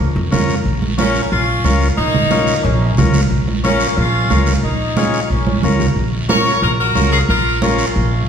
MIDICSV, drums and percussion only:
0, 0, Header, 1, 2, 480
1, 0, Start_track
1, 0, Key_signature, -5, "minor"
1, 0, Tempo, 331858
1, 945, Time_signature, 4, 2, 24, 8
1, 11988, End_track
2, 0, Start_track
2, 0, Title_t, "Drums"
2, 466, Note_on_c, 9, 73, 76
2, 473, Note_on_c, 9, 63, 82
2, 473, Note_on_c, 9, 64, 83
2, 611, Note_off_c, 9, 73, 0
2, 617, Note_off_c, 9, 63, 0
2, 617, Note_off_c, 9, 64, 0
2, 704, Note_on_c, 9, 73, 67
2, 849, Note_off_c, 9, 73, 0
2, 946, Note_on_c, 9, 74, 76
2, 950, Note_on_c, 9, 63, 29
2, 1090, Note_off_c, 9, 74, 0
2, 1095, Note_off_c, 9, 63, 0
2, 1186, Note_on_c, 9, 63, 72
2, 1330, Note_off_c, 9, 63, 0
2, 1422, Note_on_c, 9, 73, 67
2, 1427, Note_on_c, 9, 63, 94
2, 1566, Note_off_c, 9, 73, 0
2, 1572, Note_off_c, 9, 63, 0
2, 1659, Note_on_c, 9, 73, 73
2, 1803, Note_off_c, 9, 73, 0
2, 1893, Note_on_c, 9, 74, 59
2, 1903, Note_on_c, 9, 63, 34
2, 2038, Note_off_c, 9, 74, 0
2, 2048, Note_off_c, 9, 63, 0
2, 2376, Note_on_c, 9, 73, 73
2, 2383, Note_on_c, 9, 63, 84
2, 2521, Note_off_c, 9, 73, 0
2, 2528, Note_off_c, 9, 63, 0
2, 2614, Note_on_c, 9, 73, 69
2, 2759, Note_off_c, 9, 73, 0
2, 2859, Note_on_c, 9, 74, 73
2, 2861, Note_on_c, 9, 63, 29
2, 3004, Note_off_c, 9, 74, 0
2, 3005, Note_off_c, 9, 63, 0
2, 3099, Note_on_c, 9, 63, 76
2, 3099, Note_on_c, 9, 64, 66
2, 3244, Note_off_c, 9, 63, 0
2, 3244, Note_off_c, 9, 64, 0
2, 3334, Note_on_c, 9, 73, 61
2, 3339, Note_on_c, 9, 63, 90
2, 3478, Note_off_c, 9, 73, 0
2, 3484, Note_off_c, 9, 63, 0
2, 3574, Note_on_c, 9, 73, 70
2, 3719, Note_off_c, 9, 73, 0
2, 3810, Note_on_c, 9, 74, 58
2, 3832, Note_on_c, 9, 63, 37
2, 3954, Note_off_c, 9, 74, 0
2, 3976, Note_off_c, 9, 63, 0
2, 4298, Note_on_c, 9, 73, 80
2, 4310, Note_on_c, 9, 63, 81
2, 4310, Note_on_c, 9, 64, 77
2, 4443, Note_off_c, 9, 73, 0
2, 4454, Note_off_c, 9, 63, 0
2, 4454, Note_off_c, 9, 64, 0
2, 4536, Note_on_c, 9, 73, 73
2, 4549, Note_on_c, 9, 63, 72
2, 4681, Note_off_c, 9, 73, 0
2, 4694, Note_off_c, 9, 63, 0
2, 4776, Note_on_c, 9, 74, 68
2, 4792, Note_on_c, 9, 63, 33
2, 4921, Note_off_c, 9, 74, 0
2, 4937, Note_off_c, 9, 63, 0
2, 5030, Note_on_c, 9, 63, 79
2, 5174, Note_off_c, 9, 63, 0
2, 5263, Note_on_c, 9, 73, 58
2, 5273, Note_on_c, 9, 63, 91
2, 5408, Note_off_c, 9, 73, 0
2, 5417, Note_off_c, 9, 63, 0
2, 5497, Note_on_c, 9, 73, 76
2, 5642, Note_off_c, 9, 73, 0
2, 5740, Note_on_c, 9, 74, 61
2, 5746, Note_on_c, 9, 63, 32
2, 5884, Note_off_c, 9, 74, 0
2, 5890, Note_off_c, 9, 63, 0
2, 6221, Note_on_c, 9, 73, 70
2, 6229, Note_on_c, 9, 63, 88
2, 6366, Note_off_c, 9, 73, 0
2, 6374, Note_off_c, 9, 63, 0
2, 6456, Note_on_c, 9, 73, 69
2, 6465, Note_on_c, 9, 63, 69
2, 6601, Note_off_c, 9, 73, 0
2, 6609, Note_off_c, 9, 63, 0
2, 6705, Note_on_c, 9, 63, 31
2, 6705, Note_on_c, 9, 74, 65
2, 6849, Note_off_c, 9, 63, 0
2, 6850, Note_off_c, 9, 74, 0
2, 7184, Note_on_c, 9, 63, 93
2, 7190, Note_on_c, 9, 73, 61
2, 7329, Note_off_c, 9, 63, 0
2, 7335, Note_off_c, 9, 73, 0
2, 7432, Note_on_c, 9, 73, 62
2, 7577, Note_off_c, 9, 73, 0
2, 7662, Note_on_c, 9, 74, 62
2, 7676, Note_on_c, 9, 63, 33
2, 7807, Note_off_c, 9, 74, 0
2, 7820, Note_off_c, 9, 63, 0
2, 7906, Note_on_c, 9, 63, 85
2, 8051, Note_off_c, 9, 63, 0
2, 8147, Note_on_c, 9, 63, 86
2, 8148, Note_on_c, 9, 73, 75
2, 8291, Note_off_c, 9, 63, 0
2, 8292, Note_off_c, 9, 73, 0
2, 8385, Note_on_c, 9, 64, 65
2, 8389, Note_on_c, 9, 73, 70
2, 8530, Note_off_c, 9, 64, 0
2, 8534, Note_off_c, 9, 73, 0
2, 8624, Note_on_c, 9, 74, 74
2, 8634, Note_on_c, 9, 63, 30
2, 8769, Note_off_c, 9, 74, 0
2, 8778, Note_off_c, 9, 63, 0
2, 9097, Note_on_c, 9, 73, 70
2, 9104, Note_on_c, 9, 63, 100
2, 9242, Note_off_c, 9, 73, 0
2, 9248, Note_off_c, 9, 63, 0
2, 9339, Note_on_c, 9, 73, 64
2, 9483, Note_off_c, 9, 73, 0
2, 9582, Note_on_c, 9, 63, 35
2, 9582, Note_on_c, 9, 74, 59
2, 9726, Note_off_c, 9, 74, 0
2, 9727, Note_off_c, 9, 63, 0
2, 10058, Note_on_c, 9, 63, 94
2, 10060, Note_on_c, 9, 73, 81
2, 10203, Note_off_c, 9, 63, 0
2, 10204, Note_off_c, 9, 73, 0
2, 10295, Note_on_c, 9, 73, 72
2, 10440, Note_off_c, 9, 73, 0
2, 10536, Note_on_c, 9, 74, 70
2, 10542, Note_on_c, 9, 63, 28
2, 10681, Note_off_c, 9, 74, 0
2, 10687, Note_off_c, 9, 63, 0
2, 11019, Note_on_c, 9, 63, 87
2, 11025, Note_on_c, 9, 73, 67
2, 11164, Note_off_c, 9, 63, 0
2, 11170, Note_off_c, 9, 73, 0
2, 11260, Note_on_c, 9, 73, 72
2, 11405, Note_off_c, 9, 73, 0
2, 11501, Note_on_c, 9, 74, 57
2, 11510, Note_on_c, 9, 63, 34
2, 11646, Note_off_c, 9, 74, 0
2, 11655, Note_off_c, 9, 63, 0
2, 11988, End_track
0, 0, End_of_file